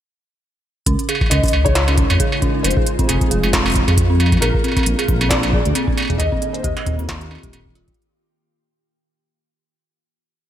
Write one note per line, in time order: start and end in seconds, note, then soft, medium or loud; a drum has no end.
0.86 0.95 C#2 medium
0.86 2.64 C#3 medium
0.86 0.94 C#4 medium
0.86 kick loud
0.86 closed hi-hat medium
0.99 closed hi-hat soft
1.06 4.42 G#3 medium
1.06 1.13 G#4 medium
1.06 closed hi-hat medium
1.06 struck metal soft
1.12 3.36 D#4 medium
1.12 5.14 F4 medium
1.12 struck metal soft
1.21 kick loud
1.21 struck metal soft
1.26 1.66 D#5 loud
1.26 struck metal soft
1.31 1.40 C#2 medium
1.31 1.42 C#4 medium
1.31 closed hi-hat medium
1.31 struck metal medium
1.43 1.49 C#4 medium
1.43 kick loud
1.43 closed hi-hat soft
1.46 closed hi-hat soft
1.47 closed hi-hat soft
1.47 closed hi-hat medium
1.49 2.05 C#2 medium
1.49 closed hi-hat soft
1.49 struck metal medium
1.64 1.69 G#4 medium
1.64 2.60 C#5 loud
1.64 kick loud
1.64 closed hi-hat soft
1.75 snare loud
1.75 closed hi-hat medium
1.88 1.96 C#4 medium
1.88 closed hi-hat soft
1.88 struck metal medium
1.98 2.05 C#4 medium
1.98 kick loud
1.98 closed hi-hat medium
2.10 2.17 F2 medium
2.10 closed hi-hat soft
2.10 struck metal medium
2.20 2.24 G#4 medium
2.20 kick loud
2.20 closed hi-hat medium
2.32 struck metal medium
2.42 2.53 C#4 medium
2.42 kick loud
2.42 closed hi-hat soft
2.55 2.60 C#4 medium
2.63 2.73 F1 loud
2.63 3.09 C5 medium
2.63 closed hi-hat medium
2.63 struck metal soft
2.71 closed hi-hat soft
2.77 2.80 G#4 medium
2.77 kick loud
2.87 closed hi-hat medium
2.99 3.07 C4 medium
2.99 kick loud
2.99 closed hi-hat soft
3.07 3.18 F1 medium
3.07 3.16 C4 medium
3.07 3.49 G#4 medium
3.07 closed hi-hat medium
3.07 struck metal medium
3.21 kick loud
3.21 closed hi-hat soft
3.31 3.82 F1 medium
3.31 3.35 G#4 medium
3.31 closed hi-hat medium
3.44 closed hi-hat soft
3.44 struck metal soft
3.53 3.64 C4 medium
3.53 kick loud
3.53 snare loud
3.53 closed hi-hat medium
3.65 3.71 C4 medium
3.65 closed hi-hat soft
3.65 struck metal medium
3.68 closed hi-hat soft
3.70 closed hi-hat soft
3.72 closed hi-hat soft
3.74 kick loud
3.74 closed hi-hat soft
3.76 closed hi-hat medium
3.88 4.38 F2 loud
3.88 3.91 G#4 medium
3.88 closed hi-hat soft
3.88 struck metal soft
3.97 kick loud
3.97 closed hi-hat medium
4.10 4.18 C4 medium
4.20 4.27 C4 medium
4.20 closed hi-hat soft
4.20 struck metal soft
4.26 struck metal soft
4.32 kick loud
4.32 closed hi-hat soft
4.32 struck metal soft
4.37 5.33 A#4 medium
4.37 struck metal soft
4.42 4.51 A#1 loud
4.42 6.20 A#2 medium
4.42 4.46 G#4 medium
4.42 closed hi-hat medium
4.42 struck metal medium
4.54 kick loud
4.59 7.98 A#3 medium
4.64 4.75 C4 medium
4.64 closed hi-hat soft
4.64 struck metal soft
4.68 struck metal soft
4.72 struck metal soft
4.76 4.82 C4 medium
4.76 kick loud
4.76 closed hi-hat soft
4.76 struck metal soft
4.79 struck metal soft
4.83 4.95 A#1 medium
4.83 closed hi-hat medium
4.83 struck metal soft
4.99 5.02 G#4 medium
4.99 closed hi-hat soft
4.99 struck metal soft
5.08 5.60 A#1 medium
5.08 kick loud
5.08 closed hi-hat medium
5.21 5.29 C4 medium
5.21 closed hi-hat soft
5.21 struck metal medium
5.29 5.38 C4 medium
5.29 6.22 D5 loud
5.29 kick loud
5.29 snare loud
5.29 closed hi-hat medium
5.43 closed hi-hat soft
5.43 struck metal soft
5.53 5.58 G#4 medium
5.53 kick loud
5.65 5.73 D2 medium
5.65 closed hi-hat soft
5.75 5.87 C4 medium
5.75 closed hi-hat medium
5.75 struck metal soft
5.88 5.94 C4 medium
5.88 kick loud
5.98 closed hi-hat soft
5.98 struck metal medium
6.00 struck metal medium
6.02 struck metal medium
6.05 struck metal soft
6.08 6.14 G#4 medium
6.08 kick loud
6.08 closed hi-hat soft
6.08 struck metal soft
6.12 kick medium
6.15 kick medium
6.17 6.51 D#5 loud
6.17 kick medium
6.20 6.29 D#2 loud
6.20 7.98 D#3 medium
6.20 kick soft
6.20 closed hi-hat medium
6.20 struck metal soft
6.23 kick soft
6.26 kick soft
6.29 kick soft
6.32 6.41 C4 medium
6.32 kick loud
6.42 6.49 C4 medium
6.42 closed hi-hat medium
6.53 6.64 C5 medium
6.53 closed hi-hat soft
6.62 6.73 D#2 medium
6.62 6.69 G4 medium
6.62 7.48 D#5 medium
6.62 kick loud
6.62 closed hi-hat medium
6.77 closed hi-hat soft
6.77 struck metal medium
6.83 7.38 D#2 medium
6.83 6.98 C4 medium
6.83 7.98 F4 medium
6.83 kick loud
6.83 closed hi-hat medium
6.89 kick medium
6.91 kick medium
6.94 kick medium
6.96 7.05 C4 medium
6.96 kick soft
6.96 closed hi-hat soft
7.09 kick loud
7.09 snare loud
7.09 closed hi-hat medium
7.21 7.25 G4 medium
7.21 closed hi-hat soft
7.31 7.38 C4 medium
7.31 struck metal soft
7.35 struck metal soft
7.38 struck metal soft
7.43 7.93 D#1 loud
7.43 7.52 G4 medium
7.43 kick loud
7.43 closed hi-hat medium
7.53 7.61 C4 medium
7.53 closed hi-hat medium
7.53 struck metal medium
7.66 kick loud
7.75 7.83 F4 medium
7.75 closed hi-hat soft
7.75 struck metal soft
7.88 kick loud
7.88 closed hi-hat soft
7.94 closed hi-hat soft
8.02 closed hi-hat soft